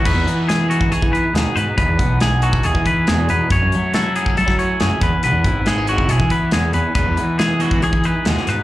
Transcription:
<<
  \new Staff \with { instrumentName = "Clean electric guitar" } { \time 4/4 \key e \major \tempo 4 = 139 b'4 gis'8 fis'8 gis'8 b'8 gis'8 b'8 | b'4 gis'8 fis'8 gis'8 b'8 gis'8 b'8 | cis''4 a'8 gis'8 a'8 cis''8 gis'8 b'8 | b'4 gis'8 fis'8 gis'8 b'8 gis'8 b'8 |
b'4 gis'8 fis'8 gis'8 b'8 gis'8 b'8 | }
  \new Staff \with { instrumentName = "Clean electric guitar" } { \time 4/4 \key e \major << { <dis' e'>8 b8 gis'8 dis'8 gis'8 dis'8 b8 dis'8 | dis'8 b8 gis'8 dis'8 gis'8 dis'8 b8 dis'8 | cis'8 a8 e'8 b16 cis'16 e'8 cis'8 a8 cis'8 | b8 e'8 b16 cis'16 e'8 cis'8 b8 cis'8 cis'8 |
dis'8 gis8 gis'8 dis'8 gis'8 dis'8 gis8 dis'8 | } \\ { e,4. e4. b,4 | e,4. e4. b,4 | fis,4. fis4. cis8 e,8~ | e,4 e4. e,4 e,8 |
e,4. e4. b,4 | } >> }
  \new Staff \with { instrumentName = "Overdriven electric guitar" } { \time 4/4 \key e \major r1 | r1 | r1 | r1 |
<e gis b e'>8 r4 <e gis b e'>8 r4 <e gis b e'>8 r8 | }
  \new Staff \with { instrumentName = "Picked electric bass" } { \clef bass \time 4/4 \key e \major e,16 e,16 e4. e16 e8 r16 dis,16 r16 gis,16 r16 | dis,16 e,16 b,,4. dis,16 e8. e,8 e,16 r16 | fis,16 fis,16 fis4. fis16 fis8 r16 fis,16 r16 e,16 r16 | b,,16 e,16 gis,,4. b,,16 e8. e,8 e,16 r16 |
e,16 e,16 e4. e16 e8 r16 dis,16 r16 gis,16 r16 | }
  \new DrumStaff \with { instrumentName = "Drums" } \drummode { \time 4/4 <cymc bd>8 hh8 <hh sn>8 hh16 bd16 hh16 bd16 hh8 <hh sn>8 hh8 | <hh bd>8 <hh bd>8 <hh sn>8 hh16 bd16 hh16 bd16 <hh bd>8 <hh sn>8 hh8 | <hh bd>8 hh8 <hh sn>8 hh16 bd16 hh16 <bd sn>16 hh8 <hh sn>8 <hh bd>8 | hh8 <hh bd>8 <hh sn>8 hh16 bd16 hh16 bd16 <hh bd>8 <hh sn>8 hh8 |
<hh bd>8 hh8 <hh sn>8 hh16 bd16 hh16 bd16 hh8 <hh sn>16 sn16 <hh sn>8 | }
>>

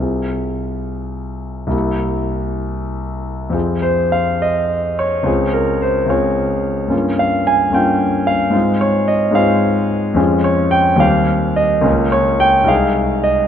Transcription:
\new Staff \with { instrumentName = "Grand piano" } { \time 6/8 \key f \minor \tempo 4. = 72 << { r2. | r2. | r8 c''8 f''8 ees''4 des''8~ | des''8 bes'8 c''8 des''4. |
r8 f''8 aes''8 g''4 f''8~ | f''8 des''8 ees''8 f''4. | r8 des''8 g''8 f''4 ees''8 | r8 des''8 g''8 f''4 ees''8 | } \\ { <c, c' f' aes'>2. | <c, bes e' g'>2. | <f, c' f' aes'>2. | <des, c' f' aes'>4. <des, c' f' aes'>4. |
<g, bes des' f'>4. <g, bes des' f'>4. | <aes, aes c' f'>4. <aes, aes c' f'>4. | <f, aes des' f'>4. <ees, g c' g'>4. | <des, bes des' f'>4. <c, aes ees' aes'>4. | } >> }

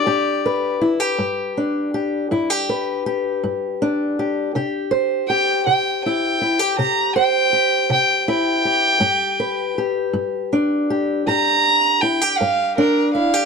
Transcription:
<<
  \new Staff \with { instrumentName = "Fiddle" } { \time 12/8 \key g \major \tempo 4. = 53 d''4 r1 r4 | r4 g''8 g''8 g''4 bes''8 g''4 g''8 g''4~ | g''4 r2 bes''4 g''8 f''8 bes'8 f''8 | }
  \new Staff \with { instrumentName = "Steel-string acoustic guitar" } { \time 12/8 \key g \major << { g'8 b'8 e'16 g'8. d'8 g'8 e'16 g'16 b'8 g'4 d'8 g'8 | g'8 c''8 g'4 e'8 e'16 g'16 g'8 c''8 g'4 e'8 g'8 | g'8 b'8 g'4 d'8 g'8 g'4 e'16 g'8. d'8 e'16 g'16 | } \\ { g,4 r8 g,4 r8 g,4 r8 g,4 r8 | c4 r8 c4 r8 c4 r8 c4 r8 | g,4 r8 g,4 r8 g,4 r8 g,4 r8 | } >> }
>>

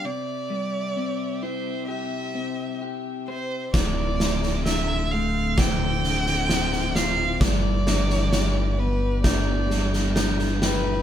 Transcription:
<<
  \new Staff \with { instrumentName = "Glockenspiel" } { \time 4/4 \key d \dorian \tempo 4 = 65 r1 | d'''4 e'''4 d'''4 c'''4 | d'''4 d'''4 g'''4 g'''4 | }
  \new Staff \with { instrumentName = "Violin" } { \time 4/4 \key d \dorian d''4. c''8 e''4 r8 c''8 | d''4 e''8 f''8 g''4. f''8 | d''4. b'8 d''4 r8 b'8 | }
  \new Staff \with { instrumentName = "String section" } { \time 4/4 \key d \dorian << { e''1 | d''1~ | d''1 | } \\ { <c c' g'>1 | <d c' f'>1 | <g g' b'>1 | } >> }
  \new Staff \with { instrumentName = "Clean electric guitar" } { \time 4/4 \key d \dorian c8 g8 c'8 e'8 g'8 c'8 g'8 c''8 | d,8 a,8 d8 a8 c'8 d8 c'8 f'8 | g,8 d8 g8 b8 d'8 g8 d'8 g'8 | }
  \new Staff \with { instrumentName = "Fingered electric bass" } { \clef bass \time 4/4 \key d \dorian r1 | d,,1 | g,,1 | }
  \new DrumStaff \with { instrumentName = "Drums" } \drummode { \time 4/4 r4 r4 r4 r4 | <bd sn>8 sn16 sn16 sn4 <bd sn>8 sn16 sn16 sn16 sn16 sn8 | <bd sn>8 sn16 sn16 sn4 <bd sn>8 sn16 sn16 sn16 sn16 sn8 | }
>>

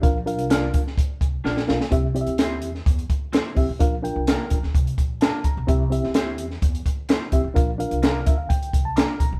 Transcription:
<<
  \new Staff \with { instrumentName = "Reed electric piano" } { \time 4/4 \key c \mixolydian \tempo 4 = 128 << { r1 | r1 | r2. a''8 bes''8~ | bes''8 r2. r8 |
r4. e''16 f''16 g''8. a''16 <bes'' d'''>8 bes''8 | } \\ { <d' f' bes' f''>8 <d' f' bes' f''>4 r2 <d' f' bes' f''>8 | <c' e' g' e''>8 <c' e' g' d'' e''>4 r2 <c' e' g' e''>8 | <d' f' bes' f''>8 <d' f' bes' g''>4 r2 r8 | <c' e' g' e''>8 <c' e' g' e''>4 r2 <c' e' g' e''>8 |
<d' f' bes' f''>8 <d' f' bes' f''>4 r2 r8 | } >> }
  \new Staff \with { instrumentName = "Clean electric guitar" } { \time 4/4 \key c \mixolydian r4 <d' f' bes' d''>8 r4. <d' f' bes' d''>8 r8 | r4 <c' e' g' c''>8 r4. <c' e' g' c''>8 r8 | r4 <bes d' f' bes'>8 r4. <bes d' f' bes'>8 r8 | r4 <c' e' g' c''>8 r4. <c' e' g' c''>8 r8 |
r4 <bes d' f' bes'>8 r4. <bes d' f' bes'>8 r8 | }
  \new Staff \with { instrumentName = "Upright bass" } { \clef bass \time 4/4 \key c \mixolydian bes,,8. c,8. d,8 d,8 c,8 bes,,8 b,,16 r16 | c,8. d,8. e,8 e,8 d,8. r16 c,16 a,,16 | bes,,8. c,8 r16 d,16 d,16 c,8 bes,,8. r16 a,,16 b,,16 | c,8. d,8. e,8 e,8 d,8. r16 c,16 a,,16 |
bes,,8. c,8. d,8 d,8 c,8. r16 bes,,16 b,,16 | }
  \new DrumStaff \with { instrumentName = "Drums" } \drummode { \time 4/4 <hh bd>8 hh16 hh16 <hh sn>8 <hh bd>16 sn16 <hh bd>8 <hh bd>8 sn16 sn16 sn16 sn16 | <hh bd>8 hh16 hh16 <hh sn>8 hh16 sn16 <hh bd>16 hh16 <hh bd>8 <hh sn>8 <hho bd>8 | <hh bd>8 hh8 <hh sn>8 <hh bd>16 sn16 <hh bd>16 hh16 <hh bd>8 <hh sn>8 <hh bd>8 | <hh bd>8 hh16 sn16 <hh sn>8 hh16 sn16 <hh bd>16 hh16 <hh bd>8 <hh sn>8 <hh bd>8 |
<hh bd>8 hh16 hh16 <hh sn>8 <hh bd>8 <hh bd>16 hh16 <hh bd>8 <hh sn>8 <hh bd>8 | }
>>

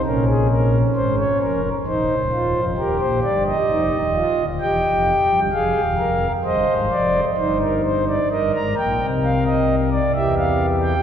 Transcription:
<<
  \new Staff \with { instrumentName = "Pipe organ" } { \time 3/4 \key ees \mixolydian \tempo 4 = 66 << { bes'16 aes'16 bes'8 c''16 des''16 bes'8 c''4 | bes'16 c''16 d''16 ees''4~ ees''16 g''4 | f''4 ees''8 d''8 c''16 bes'16 c''16 d''16 | \key ees \major ees''16 bes''16 g''8 f''16 ees''8 d''16 e''16 f''8 g''16 | } \\ { des'2 ees'8 f'8 | g'4 ees'8 f'8 g'4 | aes'8 bes'8 c''4 ees'4 | bes'2 g'4 | } >> }
  \new Staff \with { instrumentName = "Pipe organ" } { \clef bass \time 3/4 \key ees \mixolydian <bes,, bes,>4 <aes,, aes,>8 <f,, f,>8 <ees,, ees,>16 <des,, des,>16 <ees,, ees,>16 <f,, f,>16 | <ees,, ees,>16 <bes,, bes,>16 <g,, g,>8 <f,, f,>16 <ees,, ees,>8 <d,, d,>16 <e,, e,>16 <f,, f,>8 <g,, g,>16 | <f,, f,>16 <ees,, ees,>16 <f,, f,>8 <g,, g,>16 <aes,, aes,>16 <f,, f,>8 <g,, g,>4 | \key ees \major <g,, g,>16 <aes,, aes,>16 <bes,, bes,>16 <c, c>4~ <c, c>16 <e, e>4 | }
>>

